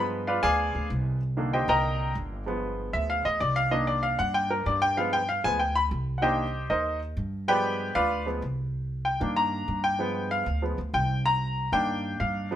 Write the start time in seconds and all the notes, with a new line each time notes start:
Already playing: G2 F3 G#3 B3
0.27 F4 B4 D5 F5
0.43 D2 G#4 D5 F5 G#5
0.75 D2
0.90 C2
1.37 D3 D#3 A#3
1.53 G4 C5 D#5 G5
1.68 C2 A#4 D#5 G5 A#5
2.15 G1
2.46 F3 G#3 B3
2.93 D2 E5
3.10 F5
3.25 D2 D#5
3.40 C2 D5
3.56 F5
3.71 D#3 A#3 D4 D#5
3.87 D5
4.03 F5
4.19 G2 F#5
4.34 G5
4.51 A#4
4.66 G2 D5
4.82 G5
4.97 F3 G#3 B3 F5
5.13 G5
5.29 F5
5.44 D2 F3 G#3 B3 G#5
5.59 G5
5.76 B5
5.91 C2
6.18 D#3 F#5
6.22 A#3 D4 G4 C5 D#5 G5
6.70 D#2 D#4 A#4 C5 D#5
7.17 G2
7.48 F3 G#3 B3 G4 B4 D5 G5
7.95 D2 F4 B4 D5 F5
8.26 F3 G#3 B3
8.42 C2
9.05 G5
9.20 G2 D#3 A#3 D4
9.37 A#5
9.68 G2
9.84 G5
9.99 F3 G#3 B3
10.31 F5
10.46 D2
10.62 F3 G#3 B3
10.78 D2
10.94 C2 G5
11.26 A#5
11.72 G2 D#3 A#3 D4 G5
12.20 G2 F5
12.51 F3 G#3 B3